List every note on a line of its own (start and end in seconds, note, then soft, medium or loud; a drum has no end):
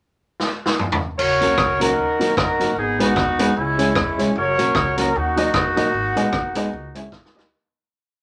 0.40 snare soft
0.66 snare medium
0.79 mid tom medium
0.92 floor tom loud
1.18 1.38 F#1 loud
1.18 1.81 F#4 medium
1.18 1.80 A#4 medium
1.18 1.77 C#5 loud
1.18 crash medium
1.40 1.56 B1 medium
1.40 1.53 F#3 medium
1.40 1.51 A#3 medium
1.40 1.54 A#3 medium
1.40 1.51 C#4 medium
1.40 1.54 C#4 medium
1.40 1.51 F#4 medium
1.40 1.54 F#4 loud
1.40 1.51 A#4 loud
1.40 closed hi-hat medium
1.58 1.92 C#2 medium
1.58 kick medium
1.58 cross-stick loud
1.79 1.93 F#3 medium
1.79 1.90 A#3 medium
1.79 1.93 A#3 medium
1.79 1.90 C#4 medium
1.79 1.94 C#4 medium
1.79 2.36 D#4 medium
1.79 1.90 F#4 medium
1.79 2.37 F#4 medium
1.79 1.94 F#4 medium
1.79 1.91 A#4 loud
1.79 2.36 A#4 loud
1.79 closed hi-hat loud
1.98 2.32 D#2 medium
2.19 2.33 F#3 medium
2.19 2.30 A#3 medium
2.19 2.33 A#3 medium
2.19 2.30 D#4 medium
2.19 2.33 D#4 medium
2.19 2.30 F#4 medium
2.19 2.33 F#4 medium
2.19 2.31 A#4 medium
2.19 closed hi-hat medium
2.37 2.57 E2 medium
2.37 2.74 D#4 medium
2.37 2.74 F#4 medium
2.37 2.74 A#4 medium
2.37 kick loud
2.37 cross-stick loud
2.59 2.74 G1 medium
2.59 2.72 F#3 medium
2.59 2.69 A#3 medium
2.59 2.72 A#3 medium
2.59 2.70 D#4 medium
2.59 2.73 D#4 medium
2.59 2.70 F#4 medium
2.59 2.73 F#4 medium
2.59 2.70 A#4 medium
2.59 closed hi-hat medium
2.76 3.00 G#1 medium
2.76 2.99 B3 medium
2.76 2.99 D#4 medium
2.76 3.00 G#4 loud
2.99 3.14 B1 medium
2.99 3.11 G#3 medium
2.99 3.09 B3 medium
2.99 3.52 B3 medium
2.99 3.12 B3 medium
2.99 3.09 D#4 medium
2.99 3.52 D#4 medium
2.99 3.12 D#4 medium
2.99 3.52 F#4 medium
2.99 3.10 G#4 medium
2.99 3.12 G#4 medium
2.99 3.10 B4 loud
2.99 closed hi-hat medium
3.16 3.50 D#2 medium
3.16 kick loud
3.16 cross-stick medium
3.38 3.51 G#3 medium
3.38 3.49 B3 medium
3.38 3.51 B3 medium
3.38 3.49 D#4 medium
3.38 3.52 D#4 medium
3.38 3.49 G#4 medium
3.38 3.52 G#4 medium
3.38 3.49 B4 loud
3.38 closed hi-hat loud
3.56 3.90 C#2 loud
3.56 4.32 G#3 medium
3.56 4.32 C#4 medium
3.56 4.19 E4 loud
3.77 3.91 G#3 medium
3.77 3.88 C#4 medium
3.77 3.91 C#4 medium
3.77 3.88 E4 medium
3.77 3.91 E4 medium
3.77 3.88 G#4 medium
3.77 3.92 G#4 medium
3.77 3.89 C#5 loud
3.77 closed hi-hat medium
3.95 4.20 D#2 loud
3.95 kick loud
3.95 cross-stick loud
4.17 4.33 F1 medium
4.17 4.31 G#3 medium
4.17 4.28 C#4 medium
4.17 4.31 C#4 medium
4.17 4.28 E4 medium
4.17 4.31 E4 medium
4.17 4.28 G#4 medium
4.17 4.32 G#4 medium
4.17 4.29 C#5 medium
4.17 closed hi-hat medium
4.36 4.55 F#1 loud
4.36 5.11 F#4 medium
4.36 4.97 A#4 medium
4.36 4.95 C#5 loud
4.57 4.72 B1 medium
4.57 4.70 F#3 medium
4.57 4.70 A#3 medium
4.57 4.68 C#4 medium
4.57 4.71 C#4 medium
4.57 4.68 F#4 medium
4.57 4.71 F#4 medium
4.57 4.68 A#4 medium
4.57 4.68 C#5 loud
4.57 closed hi-hat medium
4.75 5.09 C#2 medium
4.75 kick loud
4.75 cross-stick medium
4.97 5.10 F#3 medium
4.97 5.10 A#3 medium
4.97 5.07 C#4 medium
4.97 5.10 C#4 loud
4.97 5.07 F#4 medium
4.97 5.11 F#4 medium
4.97 5.08 A#4 medium
4.97 5.13 A#4 medium
4.97 5.08 C#5 loud
4.97 closed hi-hat loud
5.15 5.49 D#2 loud
5.15 7.09 A#3 medium
5.15 7.09 D#4 medium
5.15 7.13 F#4 loud
5.36 5.49 F#3 medium
5.36 5.49 A#3 medium
5.36 5.47 D#4 medium
5.36 5.50 D#4 medium
5.36 5.47 F#4 medium
5.36 5.50 F#4 loud
5.36 5.47 A#4 medium
5.36 5.47 D#5 loud
5.36 closed hi-hat medium
5.54 5.74 E2 medium
5.54 kick medium
5.54 cross-stick loud
5.76 5.91 G1 medium
5.76 5.89 F#3 medium
5.76 5.89 A#3 medium
5.76 5.87 D#4 medium
5.76 5.89 D#4 medium
5.76 5.87 F#4 medium
5.76 5.90 F#4 medium
5.76 5.87 A#4 medium
5.76 5.87 D#5 loud
5.76 closed hi-hat medium
5.94 6.13 G#1 loud
6.16 6.31 A#1 medium
6.16 6.28 G#3 medium
6.16 6.28 B3 medium
6.16 6.26 D#4 medium
6.16 6.29 D#4 medium
6.16 6.26 G#4 medium
6.16 6.29 G#4 medium
6.16 6.26 B4 medium
6.16 6.27 D#5 loud
6.16 closed hi-hat medium
6.33 6.67 B1 medium
6.33 kick loud
6.33 cross-stick medium
6.55 6.68 G#3 loud
6.55 6.68 B3 loud
6.55 6.66 D#4 medium
6.55 6.68 D#4 loud
6.55 6.66 G#4 medium
6.55 6.69 G#4 loud
6.55 6.66 B4 medium
6.55 6.66 D#5 loud
6.55 closed hi-hat loud
6.73 7.07 C#2 loud
6.95 7.07 G#3 medium
6.95 7.08 C#4 medium
6.95 7.05 E4 medium
6.95 7.08 E4 medium
6.95 7.05 G#4 medium
6.95 7.08 G#4 medium
6.95 7.06 C#5 medium
6.95 7.06 E5 medium
6.95 closed hi-hat medium
7.12 7.32 D#2 loud
7.12 kick medium
7.12 snare medium
7.25 snare medium
7.34 7.49 D2 medium
7.34 7.47 G3 medium
7.34 7.47 A#3 medium
7.34 7.45 D#4 medium
7.34 7.48 D#4 medium
7.34 7.45 G4 medium
7.34 7.48 G4 medium
7.34 7.45 A#4 medium
7.34 7.45 D#5 loud
7.39 snare loud